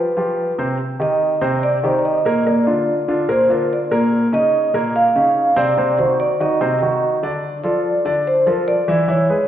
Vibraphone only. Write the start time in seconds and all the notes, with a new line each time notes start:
Already playing: B4
1.02 D#5
1.63 D5
1.85 C5
1.99 D5
2.05 D#5
2.47 D5
3.30 C5
3.51 A#4
3.73 D5
4.34 D#5
4.96 F5
5.58 D5
5.99 C5
6.20 D5
6.41 D#5
7.64 D5
8.27 C5
8.47 A#4
8.68 D5
9.10 C#5